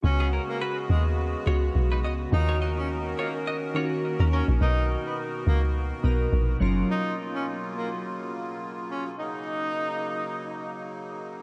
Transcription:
0.02 0.39 C#2 loud
0.02 1.01 C#3 medium
0.02 2.30 C#3 medium
0.02 1.01 G#3 medium
0.02 2.30 G#3 medium
0.02 2.30 B3 medium
0.02 1.02 B3 medium
0.02 0.29 C#4 loud
0.02 2.30 F#4 medium
0.02 1.02 F#4 medium
0.20 0.27 B3 medium
0.20 0.27 G#4 medium
0.33 0.42 C#4 medium
0.33 0.41 A#4 medium
0.49 0.59 A#3 medium
0.62 0.77 F#4 medium
0.62 0.77 B4 loud
0.89 1.35 D#2 medium
0.89 1.03 G#3 medium
1.45 1.70 C#2 medium
1.45 2.20 C#3 medium
1.45 2.20 G#3 medium
1.45 2.21 B3 medium
1.45 1.56 F4 medium
1.45 2.21 F#4 loud
1.45 1.56 C#5 medium
1.75 2.05 B1 loud
1.92 1.99 D#4 medium
1.92 1.98 B4 medium
2.04 2.27 C#2 medium
2.04 2.13 F#4 medium
2.04 2.13 D#5 medium
2.31 3.14 D#2 loud
2.31 3.29 D#3 medium
2.31 6.57 D#3 medium
2.31 3.30 A#3 medium
2.31 4.59 C#4 medium
2.31 3.30 C#4 medium
2.31 2.57 D#4 loud
2.31 2.40 F4 medium
2.31 6.57 F#4 medium
2.31 6.57 A#4 medium
2.40 3.34 F#4 medium
2.49 2.56 F4 medium
2.49 2.55 C#5 medium
2.62 2.71 F#4 medium
2.62 2.70 D#5 medium
2.78 2.88 C#4 medium
3.19 3.32 A#3 medium
3.19 3.28 F4 medium
3.19 3.27 C#5 medium
3.47 3.56 F#4 medium
3.47 3.56 D#5 medium
3.74 4.48 D#3 loud
3.74 4.49 A#3 medium
3.74 4.49 C#4 medium
3.74 3.85 F4 medium
3.74 4.50 F#4 loud
3.74 3.84 C#5 medium
4.19 4.42 D#2 medium
4.19 4.28 C#4 medium
4.19 4.27 A#4 medium
4.33 4.46 C#4 medium
4.33 4.42 C#4 medium
4.33 4.41 A#4 medium
4.48 4.58 A#1 medium
4.60 4.96 B1 loud
4.60 5.58 B2 medium
4.60 5.59 B3 medium
4.60 6.59 B3 medium
4.60 5.59 D#4 medium
4.60 4.86 D#4 loud
4.60 5.59 A#4 medium
5.06 5.17 B3 medium
5.47 5.92 C#2 loud
5.47 5.61 A#3 medium
6.03 6.27 B1 medium
6.03 6.60 B2 medium
6.03 6.61 B3 medium
6.03 6.61 D#4 medium
6.03 6.61 A#4 loud
6.32 6.55 A#1 loud
6.60 6.84 F#1 loud
6.60 9.15 C#3 medium
6.60 6.85 F#3 loud
6.60 9.15 F#3 medium
6.60 9.15 A#3 medium
6.60 6.85 C#4 medium
6.60 9.15 F4 medium
6.60 6.86 F4 medium
6.60 6.86 A#4 loud
6.91 7.14 D#4 loud
7.35 7.45 C#4 medium
7.76 7.89 A#3 medium
8.91 9.04 C#4 medium
9.18 11.42 C#3 medium
9.18 11.42 F#3 medium
9.18 11.42 A#3 medium
9.18 11.42 D#4 medium
9.18 10.86 D#4 loud

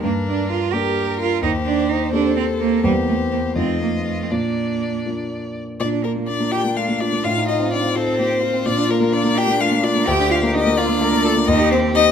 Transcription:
0.03 0.71 G2 medium
0.03 0.12 A#3 medium
0.03 0.72 D4 medium
0.03 0.72 A#4 medium
0.27 0.50 D4 medium
0.50 0.74 F4 medium
0.73 1.39 A#3 soft
0.73 1.39 D4 soft
0.73 1.19 G4 medium
0.73 1.39 G4 soft
0.73 1.41 A#4 medium
0.73 1.45 A#4 medium
1.20 1.42 F4 medium
1.43 2.11 D#2 medium
1.43 1.51 D#4 medium
1.43 2.12 G4 medium
1.43 2.83 C5 medium
1.66 1.91 D4 medium
1.89 2.12 D#4 medium
2.13 2.79 A#3 soft
2.13 2.80 C4 soft
2.13 2.36 D4 medium
2.13 2.80 G4 soft
2.13 2.85 A4 medium
2.36 2.44 C4 medium
2.59 2.83 A#3 medium
2.83 3.54 E2 medium
2.83 2.92 G3 medium
2.83 3.53 A#3 soft
2.83 3.53 C4 soft
2.83 3.56 G4 medium
2.83 3.53 G4 soft
2.83 3.58 C5 medium
3.08 3.16 A3 medium
3.32 3.40 A#3 medium
3.56 4.29 F2 soft
3.56 4.27 A3 soft
3.56 3.81 C4 medium
3.56 4.27 D#4 soft
3.56 4.32 F4 medium
3.56 4.27 F4 soft
3.56 4.33 D#5 medium
3.82 3.90 A#3 medium
4.06 4.25 A3 medium
4.23 4.32 C4 soft
4.30 5.04 A#2 soft
4.30 5.06 A#3 medium
4.30 5.43 D4 soft
4.30 5.61 D5 soft
5.06 5.77 A#3 soft
5.06 5.77 D4 soft
5.06 5.77 F4 soft
5.80 7.20 A#2 medium
5.80 6.06 D4 medium
5.80 5.88 D5 medium
5.92 6.11 D4 soft
6.04 6.30 A#3 medium
6.04 6.23 F4 soft
6.04 6.12 A#4 medium
6.16 6.35 A#3 soft
6.27 6.51 D4 medium
6.27 6.47 D4 soft
6.27 6.53 D5 medium
6.40 6.59 A#3 soft
6.52 7.26 D4 medium
6.52 6.71 F4 soft
6.52 6.60 G4 medium
6.52 6.78 G5 medium
6.64 6.84 A#3 soft
6.75 6.88 A3 soft
6.75 7.02 F4 medium
6.75 7.02 F5 medium
6.89 7.07 A#3 soft
7.00 7.25 D4 medium
7.00 7.20 F4 soft
7.00 7.25 D5 medium
7.12 7.24 A#3 soft
7.24 8.62 A2 medium
7.24 7.47 F4 medium
7.24 7.98 F4 medium
7.24 7.47 F5 medium
7.37 7.56 D#4 soft
7.47 7.70 D#4 medium
7.47 7.68 F4 soft
7.47 7.71 D#5 medium
7.60 7.79 C4 soft
7.71 7.79 D4 medium
7.71 7.91 D#4 soft
7.71 7.97 D5 medium
7.83 8.02 C4 soft
7.94 8.64 C4 medium
7.94 8.14 F4 soft
7.94 8.19 A4 medium
7.94 8.67 C5 medium
8.08 8.26 C4 soft
8.19 8.31 A#3 soft
8.19 8.42 G4 medium
8.31 8.49 C4 soft
8.43 8.61 F4 soft
8.43 9.35 F4 medium
8.54 8.66 C4 medium
8.64 10.03 A#2 medium
8.64 8.90 D4 medium
8.64 8.92 D5 loud
8.77 8.96 D4 medium
8.88 9.14 A#3 medium
8.88 9.08 F4 medium
8.88 9.14 A#4 medium
9.00 9.20 A#3 medium
9.13 9.32 D4 medium
9.13 9.38 D4 medium
9.13 9.39 D5 medium
9.24 9.43 A#3 medium
9.36 10.06 D4 medium
9.36 9.55 F4 soft
9.36 9.59 G4 medium
9.36 9.62 G5 loud
9.48 9.67 A#3 medium
9.60 9.72 A3 soft
9.60 9.83 F4 medium
9.60 9.85 F5 medium
9.71 9.90 A#3 soft
9.83 10.08 D4 medium
9.83 10.02 F4 medium
9.83 10.09 D5 medium
9.95 10.07 A#3 medium
10.07 11.44 D2 medium
10.07 10.30 G4 medium
10.07 10.79 G4 medium
10.07 10.33 G5 loud
10.20 10.38 D4 medium
10.30 10.49 F4 medium
10.30 10.39 F4 medium
10.30 10.54 F5 medium
10.43 10.61 A#3 medium
10.53 10.73 D4 medium
10.53 10.61 D#4 medium
10.53 10.78 D#5 loud
10.66 10.84 A#3 medium
10.76 11.47 D4 medium
10.76 10.96 F4 medium
10.76 11.03 F4 medium
10.76 11.49 D5 loud
10.89 11.08 A#3 medium
11.01 11.12 A3 soft
11.01 11.24 A#4 medium
11.12 11.31 A#3 medium
11.25 11.43 F4 medium
11.25 11.33 A4 medium
11.36 11.48 A#3 medium
11.47 12.12 D#2 medium
11.47 11.74 D#4 medium
11.47 12.12 G4 medium
11.47 11.71 D#5 loud
11.60 11.78 G4 medium
11.71 11.94 C4 medium
11.71 11.79 C5 medium
11.71 11.90 C5 medium
11.83 12.01 C4 medium
11.94 12.03 D#4 medium
11.94 12.12 G4 medium
11.94 12.12 D#5 loud
12.05 12.12 C4 medium

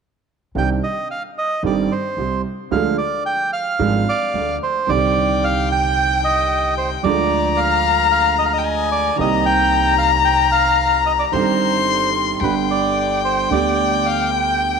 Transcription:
0.55 0.78 C2 medium
0.55 0.78 C3 medium
0.55 0.78 D#3 soft
0.55 0.78 C4 soft
0.55 0.79 D4 soft
0.55 0.79 G4 medium
0.55 0.70 G5 medium
0.84 1.08 D#5 medium
1.11 1.23 F5 medium
1.38 1.63 D#5 medium
1.63 1.86 G1 medium
1.63 1.86 G2 medium
1.63 1.86 D#3 medium
1.63 1.86 C4 soft
1.63 1.86 D4 soft
1.63 1.87 G4 medium
1.63 1.93 D5 medium
1.92 2.42 C5 medium
2.17 2.40 C2 soft
2.17 2.41 C2 soft
2.17 2.41 C3 soft
2.71 2.94 D2 medium
2.71 2.94 D3 medium
2.71 2.94 F3 medium
2.71 2.94 G#3 medium
2.71 2.94 D4 medium
2.71 2.94 G#4 medium
2.71 2.97 F5 medium
2.98 3.23 D5 medium
3.26 3.51 G5 medium
3.53 4.57 F5 medium
3.79 4.02 G#1 medium
3.79 4.03 G#1 medium
3.79 4.03 G#2 medium
3.79 4.02 F3 medium
3.79 4.02 G#3 medium
3.79 4.02 D4 soft
3.79 4.03 G#4 medium
4.09 4.59 D5 medium
4.34 4.57 D2 medium
4.34 4.57 D2 soft
4.34 4.57 D3 soft
4.63 4.90 C5 medium
4.87 6.94 C2 medium
4.87 6.94 C3 medium
4.87 6.94 D3 soft
4.87 6.93 D#3 medium
4.87 6.94 C4 soft
4.87 5.45 D5 medium
4.87 7.06 G5 medium
4.91 6.95 G4 medium
5.44 5.69 F5 medium
5.72 6.21 G5 medium
6.24 6.74 D#5 medium
6.78 6.90 C5 medium
7.03 9.08 D2 medium
7.03 9.09 D2 medium
7.03 9.08 D3 medium
7.03 9.07 F3 soft
7.03 9.08 G#3 soft
7.03 9.09 F4 soft
7.03 7.59 D5 medium
7.03 8.60 A#5 loud
7.07 9.10 G#4 medium
7.57 8.07 F5 medium
8.12 8.37 F5 medium
8.39 8.45 D#5 medium
8.45 8.52 F5 medium
8.53 8.90 D#5 medium
8.59 8.67 G5 medium
8.65 9.19 G#5 medium
8.92 9.17 D5 medium
9.16 11.22 C2 medium
9.16 11.22 C3 medium
9.16 11.21 D#3 soft
9.16 11.22 A#3 soft
9.16 11.22 C4 soft
9.16 11.34 A#5 loud
9.20 11.23 G4 medium
9.20 9.44 D#5 medium
9.46 9.95 G5 loud
9.98 10.11 F5 medium
10.25 10.50 G5 medium
10.52 11.02 F5 medium
11.06 11.12 D#5 medium
11.19 11.25 D5 medium
11.32 12.36 G1 medium
11.32 12.36 G2 medium
11.32 12.35 D#3 soft
11.32 12.36 G3 soft
11.32 12.36 C4 soft
11.32 12.37 G4 medium
11.32 12.10 C5 medium
11.32 12.42 C6 medium
12.41 13.45 G1 medium
12.41 13.45 G2 medium
12.41 13.45 D3 soft
12.41 13.45 G3 soft
12.41 13.46 B3 soft
12.41 12.55 B4 medium
12.41 14.80 G5 medium
12.45 13.47 G4 soft
12.71 13.21 D5 medium
13.25 13.49 C5 medium
13.50 14.80 D2 medium
13.50 14.80 D3 medium
13.50 14.80 G3 soft
13.50 14.80 B3 soft
13.50 14.80 G4 soft
13.50 14.07 D5 medium
14.06 14.30 F5 medium
14.33 14.80 G5 medium

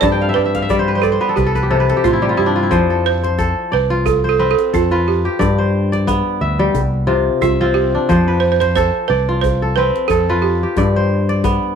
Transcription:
0.00 1.42 G2 medium
0.00 0.30 G2 medium
0.00 0.94 C4 medium
0.00 0.35 F4 medium
0.00 1.20 A4 medium
0.00 0.36 D5 loud
0.00 0.90 A5 medium
0.00 djembe tone medium
0.00 djembe bass medium
0.12 1.05 G5 medium
0.21 0.51 F5 medium
0.21 djembe slap soft
0.29 0.45 E5 medium
0.34 1.18 G2 medium
0.34 0.92 B4 medium
0.34 0.70 D5 medium
0.34 djembe slap soft
0.45 0.62 E5 medium
0.55 1.54 F5 medium
0.55 djembe slap soft
0.55 djembe tone soft
0.62 1.66 E5 medium
0.69 1.42 G3 medium
0.69 1.03 D5 medium
0.69 djembe bass medium
0.79 0.95 C5 medium
0.88 1.18 B4 medium
0.95 1.03 B4 medium
0.95 1.12 C5 medium
1.02 1.37 A4 medium
1.02 2.14 D5 medium
1.02 djembe slap soft
1.02 djembe tone medium
1.12 1.43 C5 medium
1.21 1.77 B3 medium
1.21 1.36 B4 medium
1.29 1.46 A4 medium
1.36 1.92 C2 medium
1.36 2.33 G4 medium
1.36 1.55 B4 medium
1.36 djembe slap soft
1.36 djembe bass medium
1.46 1.70 A4 medium
1.55 1.77 B4 medium
1.55 djembe slap soft
1.55 djembe tone medium
1.63 1.96 G4 medium
1.70 2.76 C3 medium
1.70 1.89 A4 medium
1.70 djembe slap soft
1.80 2.77 B4 medium
1.89 2.90 A4 medium
1.89 djembe slap soft
1.97 2.22 G4 medium
2.04 2.35 A2 medium
2.04 2.29 F4 medium
2.04 2.39 F4 medium
2.04 djembe slap soft
2.04 djembe tone medium
2.04 djembe bass medium
2.13 2.35 E4 medium
2.22 2.76 G3 medium
2.22 3.63 G4 medium
2.29 2.55 F4 medium
2.37 2.69 G2 medium
2.37 2.62 E4 medium
2.37 3.01 G4 medium
2.46 4.14 D4 medium
2.56 3.90 F4 medium
2.63 3.96 E4 medium
2.71 3.53 F2 medium
2.71 5.05 F3 medium
2.71 3.23 C5 medium
2.71 djembe slap soft
2.71 djembe tone medium
2.71 djembe bass medium
2.90 3.38 A4 medium
3.06 3.69 C5 medium
3.23 4.24 C5 medium
3.23 djembe slap soft
3.39 4.70 A4 medium
3.39 djembe tone medium
3.39 djembe bass medium
3.72 4.54 C2 medium
3.72 4.04 B4 medium
3.72 4.83 D5 medium
3.90 4.91 F4 medium
4.06 4.28 A4 medium
4.06 djembe tone medium
4.06 djembe bass medium
4.24 4.98 C5 medium
4.29 4.50 A4 medium
4.39 4.98 C4 medium
4.39 4.91 B4 medium
4.51 4.74 A4 medium
4.59 djembe slap medium
4.73 5.27 F2 medium
4.73 5.08 F4 medium
4.73 6.05 A4 medium
4.73 djembe tone medium
4.73 djembe bass medium
4.91 6.47 F4 medium
4.91 5.64 B4 medium
4.91 djembe slap soft
5.08 6.37 G4 medium
5.25 6.66 G4 medium
5.39 6.79 G2 medium
5.39 6.21 G2 medium
5.39 5.92 D5 medium
5.39 djembe slap soft
5.39 djembe tone medium
5.39 djembe bass medium
5.58 6.13 C5 medium
5.92 7.03 D5 medium
5.92 djembe slap soft
6.07 7.13 B3 medium
6.07 djembe tone medium
6.07 djembe bass medium
6.41 6.68 D2 medium
6.41 7.13 E5 medium
6.59 6.79 G3 medium
6.75 7.28 C2 loud
6.75 djembe tone medium
6.75 djembe bass medium
6.94 djembe slap soft
7.07 8.13 C3 medium
7.07 7.60 F4 medium
7.41 7.96 C2 medium
7.41 7.76 F4 medium
7.41 8.15 E5 medium
7.41 djembe tone medium
7.41 djembe bass medium
7.61 8.34 C4 medium
7.61 9.12 F4 medium
7.61 djembe slap soft
7.74 8.44 G4 medium
7.95 9.62 D4 medium
8.09 8.90 F2 loud
8.09 10.43 F3 medium
8.09 8.60 C5 medium
8.09 djembe slap soft
8.09 djembe tone medium
8.09 djembe bass medium
8.28 9.51 B4 medium
8.40 8.51 C5 loud
8.52 8.59 C5 medium
8.60 8.74 C5 medium
8.60 9.84 C5 medium
8.60 djembe slap soft
8.76 9.62 A4 medium
8.76 9.10 C5 loud
8.76 djembe tone medium
8.76 djembe bass medium
9.08 9.90 C2 medium
9.08 9.40 B4 medium
9.08 10.21 D5 medium
9.29 10.29 F4 medium
9.41 9.73 C5 medium
9.41 djembe tone medium
9.41 djembe bass medium
9.62 10.10 A4 medium
9.62 djembe slap soft
9.76 10.35 C4 medium
9.76 10.10 B4 medium
9.76 10.29 B4 medium
9.96 djembe slap soft
10.08 10.64 F2 medium
10.08 10.43 A4 medium
10.08 11.42 A4 medium
10.08 djembe tone medium
10.08 djembe bass medium
10.29 11.75 F4 medium
10.29 11.02 B4 medium
10.42 11.39 G4 medium
10.63 11.75 G4 medium
10.77 11.58 G2 loud
10.77 11.75 G2 medium
10.77 11.29 D5 medium
10.77 djembe tone medium
10.77 djembe bass medium
10.96 11.50 C5 medium
11.29 11.75 D5 medium
11.29 djembe slap soft
11.44 11.75 B3 medium
11.44 djembe tone medium
11.44 djembe bass medium
11.63 djembe slap soft

